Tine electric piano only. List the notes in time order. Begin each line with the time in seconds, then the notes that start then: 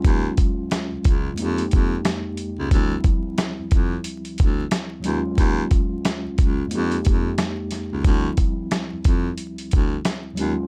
Already playing: D#2 F#3 G#3 C#4 F4
1.34 F2 G#3
1.38 A#3 D#4
1.42 G4
2.68 D2 F3
2.72 G3 C4
2.77 E4
5.00 D#2 F#3
5.04 G#3 C#4
5.08 F4
6.67 F2 G#3
6.71 A#3 D#4
6.75 G4
8.01 D2 F3
8.05 G3 C4
8.10 E4
10.33 D#2 F#3
10.37 G#3 C#4
10.42 F4